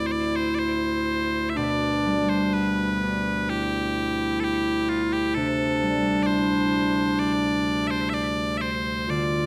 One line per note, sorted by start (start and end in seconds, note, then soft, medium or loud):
0.00 9.46 D2 medium
0.00 1.51 A2 medium
0.00 1.61 E3 soft
0.00 1.63 C4 soft
0.00 1.55 E4 medium
0.00 1.72 E4 soft
0.07 0.12 C5 medium
0.12 0.36 D5 medium
0.36 0.55 C5 medium
0.55 0.59 D5 medium
0.59 1.50 C5 medium
1.50 1.57 E5 medium
1.55 5.41 B2 medium
1.55 3.19 D4 medium
1.55 2.29 D5 medium
2.06 5.41 G3 medium
2.29 2.53 C5 medium
2.53 5.42 B3 medium
2.53 3.50 B4 medium
3.02 5.82 D4 medium
3.49 5.39 E4 medium
3.49 4.40 G4 medium
4.40 4.44 A4 medium
4.44 4.89 G4 medium
4.89 5.13 F4 medium
5.13 5.34 G4 medium
5.34 9.13 C3 medium
5.34 8.83 D4 loud
5.34 6.23 A4 medium
5.82 9.13 G3 medium
6.23 7.19 C5 loud
6.23 6.27 D5 loud
6.27 8.88 E4 medium
6.72 9.08 G4 medium
7.19 7.87 D5 loud
7.87 8.09 C5 loud
7.87 7.90 E5 loud
8.09 8.14 E5 loud
8.14 8.57 D5 loud
8.57 9.10 C5 medium
8.57 8.61 E5 medium
9.08 9.46 D3 medium
9.08 9.46 F4 loud
9.08 9.46 D5 medium